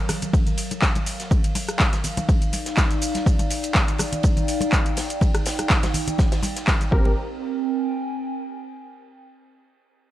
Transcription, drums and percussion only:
0.09 cross-stick medium
0.09 open hi-hat loud
0.09 ride medium
0.09 muted conga soft
0.09 low conga medium
0.09 shaker medium
0.22 closed hi-hat medium
0.22 low conga medium
0.22 shaker soft
0.33 kick loud
0.33 ride medium
0.33 muted conga medium
0.33 shaker soft
0.46 closed hi-hat soft
0.46 ride soft
0.46 low conga medium
0.46 shaker soft
0.57 open hi-hat loud
0.57 ride medium
0.57 shaker medium
0.71 closed hi-hat medium
0.71 muted conga medium
0.71 shaker soft
0.82 kick loud
0.82 snare loud
0.82 clap loud
0.82 ride medium
0.82 shaker soft
0.95 closed hi-hat soft
0.95 muted conga medium
0.95 shaker soft
1.06 open hi-hat loud
1.06 ride medium
1.06 shaker medium
1.20 snare soft
1.20 closed hi-hat medium
1.20 shaker soft
1.31 kick loud
1.31 ride medium
1.31 muted conga medium
1.31 shaker soft
1.44 closed hi-hat medium
1.44 shaker soft
1.55 open hi-hat loud
1.55 ride medium
1.55 muted conga medium
1.55 shaker medium
1.69 cross-stick medium
1.69 closed hi-hat medium
1.69 shaker soft
1.79 kick loud
1.79 snare loud
1.79 clap loud
1.79 ride medium
1.79 shaker soft
1.93 snare soft
1.93 closed hi-hat medium
1.93 muted conga soft
1.93 shaker soft
2.04 open hi-hat loud
2.04 ride medium
2.04 low conga medium
2.04 shaker medium
2.17 closed hi-hat medium
2.17 muted conga medium
2.17 low conga medium
2.17 shaker soft
2.29 kick loud
2.29 ride medium
2.29 shaker soft
2.42 closed hi-hat soft
2.42 shaker soft
2.53 open hi-hat loud
2.53 ride medium
2.53 muted conga soft
2.53 high conga medium
2.53 shaker medium
2.66 snare soft
2.66 closed hi-hat medium
2.66 shaker soft
2.77 kick loud
2.77 snare loud
2.77 clap loud
2.77 ride medium
2.77 muted conga medium
2.77 shaker soft
2.91 closed hi-hat soft
2.91 shaker soft
3.02 open hi-hat loud
3.02 ride medium
3.02 shaker medium
3.15 snare medium
3.15 closed hi-hat medium
3.15 muted conga soft
3.15 high conga medium
3.15 shaker soft
3.26 kick loud
3.26 ride medium
3.26 shaker soft
3.39 closed hi-hat medium
3.39 muted conga medium
3.39 shaker soft
3.50 open hi-hat loud
3.50 ride medium
3.50 shaker medium
3.63 closed hi-hat medium
3.63 ride soft
3.63 shaker soft
3.74 kick loud
3.74 snare loud
3.74 clap loud
3.74 ride medium
3.74 muted conga soft
3.74 shaker soft
3.88 closed hi-hat medium
3.88 shaker soft
3.98 cross-stick medium
3.98 open hi-hat loud
3.98 ride medium
3.98 muted conga medium
3.98 low conga medium
3.98 shaker medium
4.12 closed hi-hat medium
4.12 low conga medium
4.12 shaker soft
4.23 kick loud
4.23 ride medium
4.23 shaker soft
4.37 closed hi-hat soft
4.37 ride soft
4.37 muted conga soft
4.37 low conga medium
4.37 shaker soft
4.48 open hi-hat loud
4.48 ride medium
4.48 shaker medium
4.61 closed hi-hat medium
4.61 ride soft
4.61 muted conga medium
4.61 shaker soft
4.72 kick loud
4.72 clap loud
4.72 ride medium
4.72 shaker soft
4.86 closed hi-hat soft
4.86 shaker soft
4.97 snare loud
4.97 open hi-hat loud
4.97 ride medium
4.97 muted conga soft
4.97 shaker medium
5.10 closed hi-hat medium
5.10 shaker soft
5.21 kick loud
5.21 ride medium
5.21 muted conga medium
5.21 shaker soft
5.35 cross-stick medium
5.35 closed hi-hat medium
5.35 shaker soft
5.46 snare loud
5.46 open hi-hat loud
5.46 ride medium
5.46 shaker medium
5.59 cross-stick medium
5.59 closed hi-hat medium
5.59 muted conga medium
5.59 shaker soft
5.70 kick loud
5.70 snare loud
5.70 clap loud
5.70 ride medium
5.70 shaker soft
5.83 snare medium
5.83 closed hi-hat medium
5.83 ride medium
5.83 muted conga medium
5.83 shaker soft
5.94 open hi-hat loud
5.94 low conga medium
5.94 shaker medium
6.08 closed hi-hat medium
6.08 low conga medium
6.08 shaker soft
6.18 kick loud
6.18 snare medium
6.18 ride medium
6.18 muted conga medium
6.18 shaker soft
6.32 snare medium
6.32 closed hi-hat soft
6.32 ride medium
6.32 shaker soft
6.43 open hi-hat loud
6.43 ride medium
6.43 muted conga medium
6.43 high conga medium
6.43 shaker medium
6.56 snare soft
6.56 closed hi-hat medium
6.56 shaker soft
6.67 kick loud
6.67 snare loud
6.67 clap loud
6.67 ride loud
6.67 shaker soft
6.81 closed hi-hat soft
6.81 muted conga medium
6.81 shaker soft
6.92 kick loud
7.05 muted conga medium
7.05 high conga medium

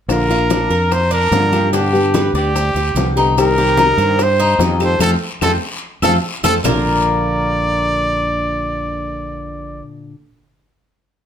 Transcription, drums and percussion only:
0.09 high bongo medium
0.09 high conga soft
0.09 long guiro medium
0.09 claves medium
0.09 maracas medium
0.30 high conga soft
0.30 maracas soft
0.50 high bongo medium
0.50 high conga medium
0.50 short guiro medium
0.50 maracas medium
0.70 high conga soft
0.70 short guiro medium
0.70 maracas soft
0.91 high bongo medium
0.91 high conga soft
0.91 long guiro medium
0.91 claves medium
0.91 maracas medium
1.12 high conga soft
1.12 maracas soft
1.32 high bongo medium
1.32 low bongo medium
1.32 high conga medium
1.32 short guiro medium
1.32 maracas medium
1.52 high conga medium
1.52 short guiro medium
1.52 claves medium
1.52 maracas soft
1.73 high bongo medium
1.73 high conga soft
1.73 long guiro medium
1.73 maracas medium
1.94 high conga soft
1.94 maracas soft
2.14 high bongo medium
2.14 high conga medium
2.14 short guiro medium
2.14 claves medium
2.14 maracas medium
2.35 high bongo soft
2.35 short guiro medium
2.35 maracas soft
2.55 high bongo medium
2.55 high conga soft
2.55 long guiro medium
2.55 claves medium
2.55 maracas medium
2.76 high bongo soft
2.76 high conga soft
2.76 maracas soft
2.96 high bongo medium
2.96 low bongo medium
2.96 high conga medium
2.96 short guiro medium
2.96 maracas medium
3.17 high bongo soft
3.17 high conga soft
3.17 short guiro medium
3.17 maracas soft
3.37 high bongo medium
3.37 high conga soft
3.37 long guiro medium
3.37 claves medium
3.37 maracas medium
3.57 high conga soft
3.57 maracas soft
3.77 high bongo medium
3.77 high conga medium
3.77 short guiro medium
3.77 maracas medium
3.99 high conga soft
3.99 short guiro medium
3.99 maracas soft
4.19 high bongo medium
4.19 high conga soft
4.19 long guiro medium
4.19 claves medium
4.19 maracas medium
4.40 high conga soft
4.40 maracas soft
4.59 high bongo medium
4.59 low bongo medium
4.59 high conga medium
4.59 short guiro medium
4.59 maracas medium
4.81 short guiro medium
4.81 claves medium
4.81 maracas soft
5.00 high bongo medium
5.00 high conga medium
5.00 long guiro medium
5.00 claves loud
5.00 maracas medium
5.41 high bongo medium
5.41 high conga medium
5.41 long guiro medium
5.41 claves medium
5.41 maracas medium
6.02 high bongo medium
6.02 high conga medium
6.02 long guiro loud
6.02 claves medium
6.02 maracas loud
6.44 high bongo medium
6.44 high conga medium
6.44 claves medium
6.44 maracas medium
6.65 low bongo loud
6.65 low conga medium
6.65 long guiro medium
6.65 claves loud
6.65 maracas medium

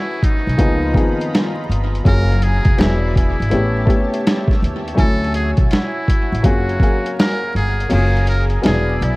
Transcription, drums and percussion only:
0.23 kick medium
0.23 closed hi-hat medium
0.49 closed hi-hat soft
0.59 kick medium
0.59 closed hi-hat medium
0.94 kick medium
0.94 closed hi-hat medium
1.21 closed hi-hat medium
1.35 snare loud
1.35 closed hi-hat medium
1.72 closed hi-hat medium
1.95 closed hi-hat soft
2.05 kick loud
2.05 closed hi-hat medium
2.32 closed hi-hat soft
2.42 closed hi-hat medium
2.65 kick loud
2.65 closed hi-hat soft
2.78 snare loud
2.78 closed hi-hat medium
3.16 kick medium
3.16 closed hi-hat medium
3.42 closed hi-hat soft
3.51 closed hi-hat medium
3.87 kick medium
3.87 closed hi-hat soft
4.14 closed hi-hat medium
4.27 snare loud
4.27 closed hi-hat medium
4.48 kick medium
4.48 snare soft
4.64 closed hi-hat medium
4.88 closed hi-hat soft
4.98 kick loud
4.98 closed hi-hat medium
5.24 closed hi-hat soft
5.34 closed hi-hat medium
5.57 kick loud
5.57 closed hi-hat soft
5.71 snare loud
5.71 closed hi-hat medium
6.08 kick medium
6.08 closed hi-hat medium
6.35 closed hi-hat soft
6.44 kick medium
6.44 closed hi-hat medium
6.69 closed hi-hat soft
6.80 kick medium
6.80 closed hi-hat medium
7.06 closed hi-hat medium
7.19 snare loud
7.19 closed hi-hat medium
7.56 closed hi-hat medium
7.80 closed hi-hat soft
7.90 closed hi-hat medium
7.90 crash medium
8.17 closed hi-hat soft
8.27 closed hi-hat medium
8.50 closed hi-hat soft
8.63 snare loud
8.63 closed hi-hat medium
9.02 closed hi-hat medium

